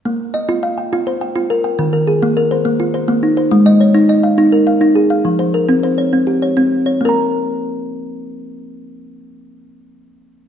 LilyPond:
\new Staff \with { instrumentName = "Kalimba" } { \time 12/8 \key bes \dorian \tempo 4. = 138 << { r4 ees''4 f''8 g''4 c''8 g''4 bes'8 g''8~ | g''8 bes'8 aes'4 bes'8 c''4 f'8 c''4 ees'8 c''8~ | c''8 ees''8 des''4 ees''8 f''4 bes'8 f''4 aes'8 f''8~ | f''8 c''8 bes'4 c''8 des''4 g'8 des''4. des''8~ |
des''8 r1 r4. | r1. | } \\ { bes4 r8 f'4 r8 f'4 r8 f'4 r8 | ees4 r8 bes4 r8 bes4 r8 bes4 r8 | aes4 r8 ees'4 r8 ees'4 r8 ees'4 r8 | f4 r8 c'4 r8 c'4 r8 c'4 r8 |
<bes bes' bes''>1.~ | <bes bes' bes''>1. | } >> }